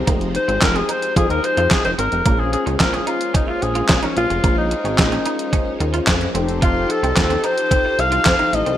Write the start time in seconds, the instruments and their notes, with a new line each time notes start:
Already playing: string machine F3 G#3 C4 D#4, analog polysynth D#4 G4 G#4 C5
0.07 analog synth bass F1, clean electric guitar A#3, kick, closed hi-hat
0.21 closed hi-hat
0.35 alto saxophone C5, muted clean electric guitar stroke, closed hi-hat
0.48 analog synth bass G#1, clean electric guitar C4, closed hi-hat
0.61 analog synth bass F1, alto saxophone A#4, muted clean electric guitar stroke, kick, snare, clap, closed hi-hat
0.75 clean electric guitar C4, alto saxophone G#4, closed hi-hat
0.89 clean electric guitar D#4, alto saxophone C5, closed hi-hat
1.02 closed hi-hat
1.16 analog synth bass F2, clean electric guitar C4, alto saxophone G#4, kick, closed hi-hat
1.30 analog synth bass D#2, alto saxophone A#4, closed hi-hat
1.44 alto saxophone C5, muted clean electric guitar stroke, closed hi-hat
1.57 analog synth bass F2, clean electric guitar F4, closed hi-hat
1.71 alto saxophone G#4, kick, snare, clap, closed hi-hat
1.85 analog synth bass F1, alto saxophone C5, closed hi-hat
1.98 analog synth bass G#1, clean electric guitar C4, alto saxophone A#4, closed hi-hat
2.12 analog synth bass F1, closed hi-hat
2.25 analog synth bass A#1, string machine G#3 A#3 C#4, clean electric guitar A#3, analog polysynth C#4 F4 G#4 C5, kick, closed hi-hat
2.40 alto saxophone G#4
2.53 alto saxophone G#4, muted clean electric guitar stroke, closed hi-hat
2.66 analog synth bass C#2, clean electric guitar C#4, closed hi-hat
2.80 analog synth bass A#1, alto saxophone A#4, muted clean electric guitar stroke, kick, snare, clap, closed hi-hat
2.93 clean electric guitar C#4, alto saxophone G#4, closed hi-hat
3.07 clean electric guitar D#4, alto saxophone F4, closed hi-hat
3.21 closed hi-hat
3.34 clean electric guitar C#4, alto saxophone D#4, kick, closed hi-hat
3.47 alto saxophone E4 F4, muted clean electric guitar stroke
3.62 analog synth bass A#1, alto saxophone G#4, closed hi-hat
3.75 clean electric guitar F4, closed hi-hat
3.89 analog synth bass A#2, kick, snare, clap, closed hi-hat
4.03 alto saxophone C#4, clean electric guitar D#4, closed hi-hat
4.16 analog synth bass A#1, alto saxophone F4, muted clean electric guitar stroke, closed hi-hat
4.30 analog synth bass F1, clean electric guitar C#4, closed hi-hat
4.44 analog synth bass A#1, clean electric guitar A#3, kick, closed hi-hat
4.58 alto saxophone D#4
4.71 muted clean electric guitar stroke, closed hi-hat
4.85 analog synth bass G#1, clean electric guitar C#4, closed hi-hat
4.98 analog synth bass A#1, muted clean electric guitar stroke, kick, snare, clap, closed hi-hat
5.12 clean electric guitar C#4, closed hi-hat
5.26 clean electric guitar D#4, closed hi-hat
5.39 closed hi-hat
5.53 clean electric guitar C#4, kick, closed hi-hat
5.80 analog synth bass D#2, muted clean electric guitar stroke, closed hi-hat
5.94 clean electric guitar F4, closed hi-hat
6.07 analog synth bass F2, kick, snare, clap, closed hi-hat
6.21 closed hi-hat
6.34 analog synth bass F1, string machine F3 D#4 G4 A4, clean electric guitar C4, analog polysynth D#4 G4 A4 C5, closed hi-hat
6.49 closed hi-hat
6.62 clean electric guitar F4, alto saxophone F4, kick, closed hi-hat
6.89 alto saxophone A4, muted clean electric guitar stroke, closed hi-hat
7.03 analog synth bass C2, clean electric guitar C4, closed hi-hat
7.16 analog synth bass D#2, muted clean electric guitar stroke, kick, snare, clap, closed hi-hat
7.30 clean electric guitar C4, closed hi-hat
7.44 clean electric guitar D#4, alto saxophone C5, closed hi-hat
7.58 closed hi-hat
7.71 clean electric guitar C4, kick, closed hi-hat
7.85 muted clean electric guitar stroke
7.99 analog synth bass C2, alto saxophone F5, closed hi-hat
8.12 clean electric guitar F4, closed hi-hat
8.25 analog synth bass F2, kick, snare, clap, closed hi-hat
8.39 clean electric guitar D#4, closed hi-hat
8.53 analog synth bass A1, string machine F4, alto saxophone D#5, muted clean electric guitar stroke, closed hi-hat
8.66 analog synth bass C2, clean electric guitar C4, closed hi-hat